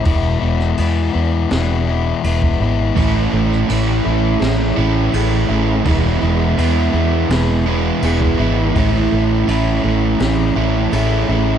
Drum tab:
CC |x---x---x---x---|x---x---x---x---|x---x---x---x---|x---x---x---x---|
SD |---o----o-------|---o----o-------|--------o-------|--------o-------|
BD |o------------o--|o---------------|o------------o--|o---------------|